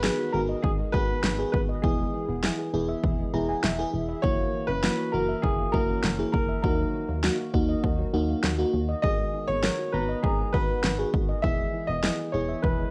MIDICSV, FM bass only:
0, 0, Header, 1, 2, 480
1, 0, Start_track
1, 0, Key_signature, 5, "minor"
1, 0, Tempo, 600000
1, 1470, Time_signature, 4, 2, 24, 8
1, 10325, End_track
2, 0, Start_track
2, 0, Title_t, "FM bass"
2, 0, Program_c, 0, 39
2, 271, Note_on_c, 0, 32, 93
2, 439, Note_off_c, 0, 32, 0
2, 511, Note_on_c, 0, 32, 104
2, 679, Note_off_c, 0, 32, 0
2, 752, Note_on_c, 0, 32, 88
2, 919, Note_off_c, 0, 32, 0
2, 990, Note_on_c, 0, 32, 102
2, 1158, Note_off_c, 0, 32, 0
2, 1230, Note_on_c, 0, 32, 103
2, 1398, Note_off_c, 0, 32, 0
2, 1470, Note_on_c, 0, 28, 101
2, 1638, Note_off_c, 0, 28, 0
2, 1830, Note_on_c, 0, 28, 94
2, 1998, Note_off_c, 0, 28, 0
2, 2189, Note_on_c, 0, 28, 103
2, 2358, Note_off_c, 0, 28, 0
2, 2430, Note_on_c, 0, 28, 102
2, 2598, Note_off_c, 0, 28, 0
2, 2669, Note_on_c, 0, 28, 94
2, 2838, Note_off_c, 0, 28, 0
2, 2909, Note_on_c, 0, 28, 100
2, 3077, Note_off_c, 0, 28, 0
2, 3149, Note_on_c, 0, 28, 101
2, 3318, Note_off_c, 0, 28, 0
2, 3390, Note_on_c, 0, 30, 95
2, 3558, Note_off_c, 0, 30, 0
2, 3749, Note_on_c, 0, 30, 91
2, 3917, Note_off_c, 0, 30, 0
2, 4110, Note_on_c, 0, 30, 97
2, 4278, Note_off_c, 0, 30, 0
2, 4349, Note_on_c, 0, 30, 101
2, 4518, Note_off_c, 0, 30, 0
2, 4591, Note_on_c, 0, 30, 102
2, 4759, Note_off_c, 0, 30, 0
2, 4830, Note_on_c, 0, 30, 108
2, 4998, Note_off_c, 0, 30, 0
2, 5070, Note_on_c, 0, 30, 93
2, 5238, Note_off_c, 0, 30, 0
2, 5310, Note_on_c, 0, 39, 96
2, 5478, Note_off_c, 0, 39, 0
2, 5670, Note_on_c, 0, 39, 89
2, 5838, Note_off_c, 0, 39, 0
2, 6032, Note_on_c, 0, 39, 100
2, 6199, Note_off_c, 0, 39, 0
2, 6270, Note_on_c, 0, 39, 105
2, 6438, Note_off_c, 0, 39, 0
2, 6509, Note_on_c, 0, 39, 95
2, 6678, Note_off_c, 0, 39, 0
2, 6749, Note_on_c, 0, 39, 107
2, 6917, Note_off_c, 0, 39, 0
2, 6989, Note_on_c, 0, 39, 101
2, 7157, Note_off_c, 0, 39, 0
2, 7230, Note_on_c, 0, 32, 101
2, 7398, Note_off_c, 0, 32, 0
2, 7590, Note_on_c, 0, 32, 90
2, 7758, Note_off_c, 0, 32, 0
2, 7949, Note_on_c, 0, 32, 99
2, 8118, Note_off_c, 0, 32, 0
2, 8190, Note_on_c, 0, 32, 109
2, 8358, Note_off_c, 0, 32, 0
2, 8432, Note_on_c, 0, 32, 86
2, 8599, Note_off_c, 0, 32, 0
2, 8671, Note_on_c, 0, 32, 99
2, 8838, Note_off_c, 0, 32, 0
2, 8911, Note_on_c, 0, 32, 101
2, 9078, Note_off_c, 0, 32, 0
2, 9150, Note_on_c, 0, 28, 104
2, 9318, Note_off_c, 0, 28, 0
2, 9510, Note_on_c, 0, 28, 98
2, 9678, Note_off_c, 0, 28, 0
2, 9871, Note_on_c, 0, 28, 105
2, 10038, Note_off_c, 0, 28, 0
2, 10110, Note_on_c, 0, 28, 105
2, 10278, Note_off_c, 0, 28, 0
2, 10325, End_track
0, 0, End_of_file